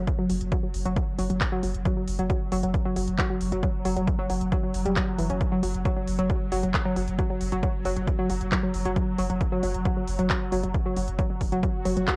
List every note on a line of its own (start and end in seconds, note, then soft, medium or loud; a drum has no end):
0.00 12.16 F#3 medium
0.07 kick loud
0.07 closed hi-hat medium
0.19 0.26 F#3 loud
0.30 0.40 F#1 loud
0.30 0.33 F#3 medium
0.30 open hi-hat loud
0.41 0.52 F#1 medium
0.41 closed hi-hat medium
0.52 0.60 F#3 loud
0.52 kick loud
0.52 closed hi-hat medium
0.63 0.66 F#3 medium
0.74 0.85 F#1 loud
0.74 open hi-hat medium
0.85 0.96 F#1 medium
0.85 0.93 F#3 loud
0.85 closed hi-hat medium
0.96 0.99 F#3 medium
0.96 kick loud
0.96 closed hi-hat medium
1.19 1.29 F#1 loud
1.19 1.26 F#3 loud
1.19 open hi-hat loud
1.30 1.41 F#1 medium
1.30 1.33 F#3 medium
1.30 closed hi-hat medium
1.41 kick loud
1.41 clap loud
1.41 closed hi-hat medium
1.52 1.60 F#3 loud
1.63 1.74 F#1 loud
1.63 1.66 F#3 medium
1.63 open hi-hat loud
1.74 1.85 F#1 medium
1.74 closed hi-hat medium
1.85 1.93 F#3 loud
1.85 kick loud
1.85 closed hi-hat medium
1.97 2.00 F#3 medium
2.07 2.18 F#1 loud
2.07 open hi-hat loud
2.19 2.29 F#1 medium
2.19 2.26 F#3 loud
2.19 closed hi-hat medium
2.30 2.33 F#3 medium
2.30 kick loud
2.30 closed hi-hat medium
2.52 2.63 F#1 loud
2.52 2.60 F#3 loud
2.52 open hi-hat loud
2.63 2.74 F#1 medium
2.63 2.66 F#3 medium
2.63 closed hi-hat medium
2.74 kick loud
2.74 closed hi-hat medium
2.85 2.93 F#3 loud
2.96 3.07 F#1 loud
2.96 2.99 F#3 medium
2.96 open hi-hat loud
3.08 3.18 F#1 medium
3.08 closed hi-hat medium
3.19 3.26 F#3 loud
3.19 kick loud
3.19 clap loud
3.19 closed hi-hat medium
3.30 3.33 F#3 medium
3.41 3.52 F#1 loud
3.41 open hi-hat medium
3.52 3.63 F#1 medium
3.52 3.60 F#3 loud
3.52 closed hi-hat medium
3.63 3.66 F#3 medium
3.63 kick loud
3.63 closed hi-hat medium
3.85 3.96 F#1 loud
3.85 3.93 F#3 loud
3.85 open hi-hat loud
3.97 4.07 F#1 medium
3.97 4.00 F#3 medium
3.97 closed hi-hat medium
4.07 kick loud
4.07 closed hi-hat medium
4.19 4.26 F#3 loud
4.30 4.40 F#1 loud
4.30 4.33 F#3 medium
4.30 open hi-hat loud
4.41 4.52 F#1 medium
4.41 closed hi-hat medium
4.52 4.60 F#3 loud
4.52 kick loud
4.52 closed hi-hat medium
4.63 4.66 F#3 medium
4.74 4.85 F#1 loud
4.74 open hi-hat loud
4.85 4.96 F#1 medium
4.85 4.90 G3 medium
4.85 closed hi-hat medium
4.96 5.04 F#3 medium
4.96 kick loud
4.96 clap loud
4.96 closed hi-hat medium
5.19 5.29 F#1 loud
5.19 5.24 E3 medium
5.19 open hi-hat loud
5.30 5.41 F#1 medium
5.30 5.35 C#4 medium
5.30 closed hi-hat medium
5.41 kick loud
5.41 closed hi-hat medium
5.52 5.60 F#3 loud
5.63 5.74 F#1 loud
5.63 5.66 F#3 medium
5.63 open hi-hat loud
5.74 5.85 F#1 medium
5.74 closed hi-hat medium
5.85 5.93 F#3 loud
5.85 kick loud
5.85 closed hi-hat medium
5.97 6.00 F#3 medium
6.07 6.18 F#1 loud
6.07 open hi-hat medium
6.19 6.29 F#1 medium
6.19 6.26 F#3 loud
6.19 closed hi-hat medium
6.30 6.33 F#3 medium
6.30 kick loud
6.30 closed hi-hat medium
6.52 6.63 F#1 loud
6.52 6.60 F#3 loud
6.52 open hi-hat loud
6.63 6.74 F#1 medium
6.63 6.66 F#3 medium
6.63 closed hi-hat medium
6.74 kick loud
6.74 clap loud
6.74 closed hi-hat medium
6.85 6.93 F#3 loud
6.96 7.07 F#1 loud
6.96 6.99 F#3 medium
6.96 open hi-hat medium
7.08 7.18 F#1 medium
7.08 closed hi-hat medium
7.19 7.26 F#3 loud
7.19 kick loud
7.19 closed hi-hat medium
7.30 7.33 F#3 medium
7.41 7.52 F#1 loud
7.41 open hi-hat loud
7.52 7.63 F#1 medium
7.52 7.60 F#3 loud
7.52 closed hi-hat medium
7.63 7.66 F#3 medium
7.63 kick loud
7.63 closed hi-hat medium
7.85 7.96 F#1 loud
7.85 7.93 F#3 loud
7.85 open hi-hat medium
7.97 8.07 F#1 medium
7.97 8.00 F#3 medium
7.97 closed hi-hat medium
8.07 kick loud
8.07 closed hi-hat medium
8.19 8.26 F#3 loud
8.30 8.40 F#1 loud
8.30 8.33 F#3 medium
8.30 open hi-hat loud
8.41 8.52 F#1 medium
8.41 closed hi-hat medium
8.52 8.60 F#3 loud
8.52 kick loud
8.52 clap loud
8.52 closed hi-hat medium
8.63 8.66 F#3 medium
8.74 8.85 F#1 loud
8.74 open hi-hat medium
8.85 8.96 F#1 medium
8.85 8.93 F#3 loud
8.85 closed hi-hat medium
8.96 8.99 F#3 medium
8.96 kick loud
8.96 closed hi-hat medium
9.19 9.29 F#1 loud
9.19 9.26 F#3 loud
9.19 open hi-hat loud
9.30 9.41 F#1 medium
9.30 9.33 F#3 medium
9.30 closed hi-hat medium
9.41 kick loud
9.41 closed hi-hat medium
9.52 9.60 F#3 loud
9.63 9.74 F#1 loud
9.63 9.66 F#3 medium
9.63 open hi-hat medium
9.74 9.85 F#1 medium
9.74 closed hi-hat medium
9.85 9.93 F#3 loud
9.85 kick loud
9.85 closed hi-hat medium
9.97 10.00 F#3 medium
10.07 10.18 F#1 loud
10.07 open hi-hat loud
10.19 10.29 F#1 medium
10.19 10.26 F#3 loud
10.19 closed hi-hat medium
10.30 10.33 F#3 medium
10.30 kick loud
10.30 clap loud
10.30 closed hi-hat medium
10.52 10.63 F#1 loud
10.52 10.60 F#3 loud
10.52 open hi-hat medium
10.63 10.74 F#1 medium
10.63 10.66 F#3 medium
10.63 closed hi-hat medium
10.74 kick loud
10.74 closed hi-hat medium
10.86 10.93 F#3 loud
10.96 11.07 F#1 loud
10.96 10.99 F#3 medium
10.96 open hi-hat loud
11.08 11.18 F#1 medium
11.08 closed hi-hat medium
11.19 11.26 F#3 loud
11.19 kick loud
11.19 closed hi-hat medium
11.30 11.33 F#3 medium
11.41 11.52 F#1 loud
11.41 kick medium
11.41 open hi-hat medium
11.52 11.63 F#1 medium
11.52 11.60 F#3 loud
11.52 closed hi-hat medium
11.63 11.66 F#3 medium
11.63 kick loud
11.63 closed hi-hat medium
11.63 swell medium
11.85 11.96 F#1 loud
11.85 11.93 F#3 loud
11.85 open hi-hat loud
11.97 12.07 F#1 medium
11.97 12.00 F#3 medium
11.97 closed hi-hat medium
12.07 kick loud
12.07 snare medium
12.07 clap loud
12.07 closed hi-hat medium